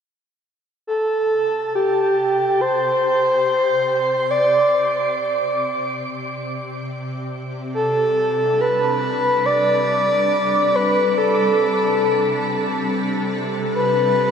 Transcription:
0, 0, Header, 1, 4, 480
1, 0, Start_track
1, 0, Tempo, 500000
1, 13738, End_track
2, 0, Start_track
2, 0, Title_t, "Soft synth lead"
2, 0, Program_c, 0, 80
2, 838, Note_on_c, 0, 69, 83
2, 1663, Note_off_c, 0, 69, 0
2, 1683, Note_on_c, 0, 67, 81
2, 2505, Note_on_c, 0, 72, 105
2, 2519, Note_off_c, 0, 67, 0
2, 4133, Note_on_c, 0, 74, 91
2, 4148, Note_off_c, 0, 72, 0
2, 4956, Note_off_c, 0, 74, 0
2, 7434, Note_on_c, 0, 69, 84
2, 8264, Note_on_c, 0, 71, 91
2, 8278, Note_off_c, 0, 69, 0
2, 9079, Note_on_c, 0, 74, 109
2, 9093, Note_off_c, 0, 71, 0
2, 10325, Note_on_c, 0, 71, 87
2, 10340, Note_off_c, 0, 74, 0
2, 10727, Note_off_c, 0, 71, 0
2, 10731, Note_on_c, 0, 69, 82
2, 12331, Note_off_c, 0, 69, 0
2, 13197, Note_on_c, 0, 71, 74
2, 13738, Note_off_c, 0, 71, 0
2, 13738, End_track
3, 0, Start_track
3, 0, Title_t, "Ambient pad"
3, 0, Program_c, 1, 92
3, 833, Note_on_c, 1, 48, 65
3, 1313, Note_on_c, 1, 67, 72
3, 1514, Note_on_c, 1, 60, 58
3, 2499, Note_on_c, 1, 74, 67
3, 7411, Note_off_c, 1, 60, 0
3, 7417, Note_on_c, 1, 55, 59
3, 7420, Note_off_c, 1, 48, 0
3, 7539, Note_on_c, 1, 62, 69
3, 8969, Note_on_c, 1, 69, 71
3, 9349, Note_off_c, 1, 67, 0
3, 9639, Note_off_c, 1, 74, 0
3, 13738, Note_off_c, 1, 55, 0
3, 13738, Note_off_c, 1, 62, 0
3, 13738, Note_off_c, 1, 69, 0
3, 13738, End_track
4, 0, Start_track
4, 0, Title_t, "Synth drone"
4, 0, Program_c, 2, 95
4, 837, Note_on_c, 2, 48, 65
4, 13738, Note_off_c, 2, 48, 0
4, 13738, End_track
0, 0, End_of_file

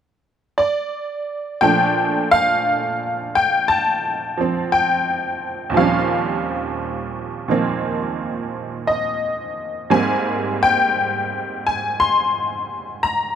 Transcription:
0, 0, Header, 1, 2, 480
1, 0, Start_track
1, 0, Key_signature, -2, "major"
1, 0, Tempo, 1036269
1, 746, Time_signature, 4, 2, 24, 8
1, 6185, End_track
2, 0, Start_track
2, 0, Title_t, "Honky-tonk piano"
2, 0, Program_c, 0, 3
2, 268, Note_on_c, 0, 74, 74
2, 728, Note_off_c, 0, 74, 0
2, 745, Note_on_c, 0, 79, 85
2, 747, Note_on_c, 0, 46, 49
2, 751, Note_on_c, 0, 53, 45
2, 752, Note_on_c, 0, 57, 42
2, 755, Note_on_c, 0, 62, 58
2, 825, Control_c, 0, 64, 127
2, 1057, Note_off_c, 0, 79, 0
2, 1072, Note_on_c, 0, 77, 101
2, 1554, Note_on_c, 0, 79, 86
2, 1568, Note_off_c, 0, 77, 0
2, 1706, Note_on_c, 0, 81, 90
2, 1710, Note_off_c, 0, 79, 0
2, 2020, Note_off_c, 0, 53, 0
2, 2027, Note_on_c, 0, 53, 45
2, 2042, Note_on_c, 0, 60, 47
2, 2187, Note_on_c, 0, 79, 81
2, 2201, Note_off_c, 0, 81, 0
2, 2638, Note_on_c, 0, 39, 51
2, 2642, Note_off_c, 0, 46, 0
2, 2649, Note_off_c, 0, 79, 0
2, 2649, Note_on_c, 0, 46, 50
2, 2653, Note_off_c, 0, 53, 0
2, 2660, Note_on_c, 0, 53, 51
2, 2669, Note_on_c, 0, 55, 48
2, 2670, Note_off_c, 0, 60, 0
2, 2671, Note_off_c, 0, 57, 0
2, 2672, Note_off_c, 0, 62, 0
2, 2673, Control_c, 0, 64, 0
2, 2673, Note_on_c, 0, 77, 69
2, 2677, Note_on_c, 0, 60, 48
2, 2690, Note_on_c, 0, 61, 60
2, 2759, Control_c, 0, 64, 127
2, 3459, Note_off_c, 0, 46, 0
2, 3462, Note_off_c, 0, 77, 0
2, 3465, Note_off_c, 0, 53, 0
2, 3466, Note_on_c, 0, 46, 44
2, 3471, Note_on_c, 0, 51, 37
2, 3472, Note_on_c, 0, 53, 36
2, 3475, Note_off_c, 0, 60, 0
2, 3479, Note_on_c, 0, 58, 42
2, 3482, Note_on_c, 0, 60, 50
2, 4111, Note_on_c, 0, 75, 71
2, 4574, Note_off_c, 0, 39, 0
2, 4580, Note_off_c, 0, 55, 0
2, 4583, Note_off_c, 0, 46, 0
2, 4583, Note_off_c, 0, 58, 0
2, 4585, Note_off_c, 0, 51, 0
2, 4585, Note_off_c, 0, 60, 0
2, 4586, Note_off_c, 0, 53, 0
2, 4586, Note_on_c, 0, 44, 58
2, 4587, Note_on_c, 0, 55, 54
2, 4590, Note_on_c, 0, 58, 51
2, 4592, Note_on_c, 0, 60, 61
2, 4592, Note_on_c, 0, 80, 82
2, 4595, Control_c, 0, 64, 0
2, 4600, Note_off_c, 0, 61, 0
2, 4604, Note_off_c, 0, 75, 0
2, 4686, Control_c, 0, 64, 127
2, 4901, Note_off_c, 0, 80, 0
2, 4922, Note_on_c, 0, 79, 96
2, 5382, Note_off_c, 0, 79, 0
2, 5403, Note_on_c, 0, 80, 77
2, 5541, Note_off_c, 0, 80, 0
2, 5558, Note_on_c, 0, 84, 98
2, 6015, Note_off_c, 0, 84, 0
2, 6035, Note_on_c, 0, 82, 83
2, 6185, Note_off_c, 0, 44, 0
2, 6185, Note_off_c, 0, 55, 0
2, 6185, Note_off_c, 0, 58, 0
2, 6185, Note_off_c, 0, 60, 0
2, 6185, Note_off_c, 0, 82, 0
2, 6185, End_track
0, 0, End_of_file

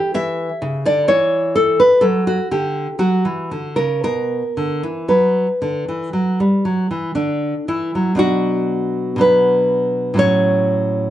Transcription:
0, 0, Header, 1, 2, 480
1, 0, Start_track
1, 0, Key_signature, 2, "minor"
1, 0, Tempo, 961538
1, 58, Time_signature, 4, 2, 24, 8
1, 1497, Tempo, 1041667
1, 3897, Tempo, 993377
1, 5295, End_track
2, 0, Start_track
2, 0, Title_t, "Nylon-string guitar"
2, 0, Program_c, 0, 24
2, 0, Note_on_c, 0, 67, 84
2, 61, Note_off_c, 0, 67, 0
2, 71, Note_on_c, 0, 52, 68
2, 74, Note_on_c, 0, 76, 92
2, 242, Note_off_c, 0, 52, 0
2, 308, Note_on_c, 0, 49, 64
2, 412, Note_off_c, 0, 76, 0
2, 417, Note_off_c, 0, 49, 0
2, 427, Note_on_c, 0, 50, 63
2, 430, Note_on_c, 0, 74, 88
2, 535, Note_off_c, 0, 50, 0
2, 538, Note_on_c, 0, 52, 64
2, 539, Note_off_c, 0, 74, 0
2, 541, Note_on_c, 0, 73, 78
2, 763, Note_off_c, 0, 73, 0
2, 776, Note_on_c, 0, 69, 83
2, 877, Note_off_c, 0, 52, 0
2, 891, Note_off_c, 0, 69, 0
2, 897, Note_on_c, 0, 71, 76
2, 1003, Note_on_c, 0, 69, 90
2, 1007, Note_on_c, 0, 54, 68
2, 1013, Note_off_c, 0, 71, 0
2, 1127, Note_off_c, 0, 69, 0
2, 1133, Note_on_c, 0, 66, 82
2, 1183, Note_off_c, 0, 54, 0
2, 1253, Note_off_c, 0, 66, 0
2, 1255, Note_on_c, 0, 50, 60
2, 1256, Note_on_c, 0, 67, 73
2, 1431, Note_off_c, 0, 50, 0
2, 1490, Note_off_c, 0, 67, 0
2, 1492, Note_on_c, 0, 54, 57
2, 1494, Note_on_c, 0, 66, 75
2, 1604, Note_off_c, 0, 54, 0
2, 1613, Note_on_c, 0, 52, 53
2, 1724, Note_off_c, 0, 52, 0
2, 1734, Note_on_c, 0, 50, 53
2, 1834, Note_off_c, 0, 66, 0
2, 1846, Note_off_c, 0, 50, 0
2, 1848, Note_on_c, 0, 70, 68
2, 1851, Note_on_c, 0, 49, 53
2, 1966, Note_off_c, 0, 49, 0
2, 1970, Note_off_c, 0, 70, 0
2, 1975, Note_on_c, 0, 47, 53
2, 1977, Note_on_c, 0, 70, 80
2, 2151, Note_off_c, 0, 47, 0
2, 2221, Note_on_c, 0, 50, 51
2, 2335, Note_off_c, 0, 50, 0
2, 2343, Note_on_c, 0, 52, 50
2, 2443, Note_off_c, 0, 70, 0
2, 2456, Note_off_c, 0, 52, 0
2, 2458, Note_on_c, 0, 54, 51
2, 2459, Note_on_c, 0, 71, 51
2, 2632, Note_off_c, 0, 54, 0
2, 2703, Note_on_c, 0, 50, 52
2, 2816, Note_off_c, 0, 50, 0
2, 2827, Note_on_c, 0, 52, 48
2, 2938, Note_off_c, 0, 52, 0
2, 2941, Note_on_c, 0, 54, 51
2, 3055, Note_off_c, 0, 54, 0
2, 3065, Note_on_c, 0, 55, 47
2, 3177, Note_off_c, 0, 55, 0
2, 3180, Note_on_c, 0, 54, 46
2, 3294, Note_off_c, 0, 54, 0
2, 3298, Note_on_c, 0, 52, 47
2, 3401, Note_off_c, 0, 71, 0
2, 3407, Note_off_c, 0, 52, 0
2, 3409, Note_on_c, 0, 50, 50
2, 3411, Note_on_c, 0, 62, 64
2, 3587, Note_off_c, 0, 50, 0
2, 3646, Note_off_c, 0, 62, 0
2, 3655, Note_on_c, 0, 52, 49
2, 3656, Note_on_c, 0, 64, 61
2, 3771, Note_off_c, 0, 52, 0
2, 3779, Note_on_c, 0, 54, 50
2, 3870, Note_on_c, 0, 47, 54
2, 3872, Note_off_c, 0, 54, 0
2, 3877, Note_on_c, 0, 54, 45
2, 3879, Note_off_c, 0, 64, 0
2, 3881, Note_on_c, 0, 62, 46
2, 3888, Note_on_c, 0, 66, 84
2, 4352, Note_off_c, 0, 47, 0
2, 4358, Note_on_c, 0, 47, 51
2, 4361, Note_off_c, 0, 54, 0
2, 4362, Note_off_c, 0, 66, 0
2, 4363, Note_off_c, 0, 62, 0
2, 4367, Note_on_c, 0, 54, 47
2, 4372, Note_on_c, 0, 62, 44
2, 4381, Note_on_c, 0, 71, 78
2, 4830, Note_on_c, 0, 45, 57
2, 4833, Note_off_c, 0, 54, 0
2, 4836, Note_off_c, 0, 47, 0
2, 4839, Note_on_c, 0, 54, 49
2, 4843, Note_off_c, 0, 71, 0
2, 4844, Note_off_c, 0, 62, 0
2, 4847, Note_on_c, 0, 61, 46
2, 4854, Note_on_c, 0, 73, 90
2, 5295, Note_off_c, 0, 45, 0
2, 5295, Note_off_c, 0, 54, 0
2, 5295, Note_off_c, 0, 61, 0
2, 5295, Note_off_c, 0, 73, 0
2, 5295, End_track
0, 0, End_of_file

